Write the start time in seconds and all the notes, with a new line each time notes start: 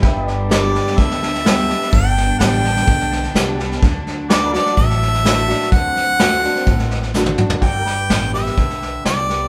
Already playing: G3
0.03 G1 G2 B3 D4 G4 B4 E5, kick, snare
0.28 D5, snare
0.49 D3 G3 B3 G4 D5, snare, hi-hat pedal
0.75 snare
0.87 snare
0.98 D2 D3 E5, kick, snare
1.10 snare
1.22 snare
1.34 snare
1.44 D3 G3 B3 G4, snare, hi-hat pedal
1.68 B3 G4, snare
1.82 snare
1.92 G1 G2 G5, kick, snare
2.17 snare
2.39 A1 D3 G3 B3 G4 G5, snare, hi-hat pedal
2.64 snare
2.76 snare
2.87 B1 D3, kick, snare
3.00 snare
3.11 snare
3.23 snare
3.35 C2 D3 G3 B3 G4, snare, hi-hat pedal
3.59 B3 G4, snare
3.71 snare
3.82 D2 D3 F#3 A3, kick, snare
4.07 snare
4.30 D3 A3 D4 F#4 B4 D5, snare, hi-hat pedal
4.53 D4 F#4 A4 D5, snare
4.66 snare
4.77 A1 A2 E5, kick, snare
4.90 snare
5.02 snare
5.13 snare
5.24 D3 A3 D4 F#4, snare, hi-hat pedal
5.48 D4 F#4, snare
5.61 snare
5.72 D2 D3 C4 F#5, kick, snare
5.96 snare
6.19 D3 A3 D4 F#4, snare, hi-hat pedal
6.43 D4 F#4, snare
6.55 snare
6.66 A1 A2, kick, snare
6.79 snare
6.90 snare
7.02 snare
7.14 D3 A3 D4 F#4, snare, hi-hat pedal
7.26 high tom
7.38 D4 F#4, mid tom
7.50 floor tom
7.61 G1 G2 F#4 A4 D5 G5, kick, snare
7.82 G4
7.86 B4, snare
8.10 A1 D3 G3 B3 G4, snare, hi-hat pedal
8.34 B3 G4 E5, snare
8.46 snare
8.57 B1 D3, kick, snare
8.70 snare
8.82 snare
9.05 C2 D3 G3 B3 G4 D5, snare, hi-hat pedal
9.29 B3 G4, snare